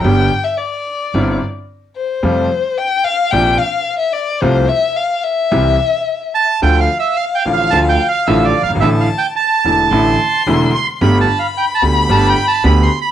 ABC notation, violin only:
X:1
M:4/4
L:1/16
Q:1/4=110
K:F
V:1 name="Violin"
g3 e d6 z4 c2- | c4 g2 f2 g2 f3 e d2 | c2 e2 f2 e8 z2 | [K:Dm] f16 |
a4 a4 c'6- c'3/2 c'/2 | =b16 |]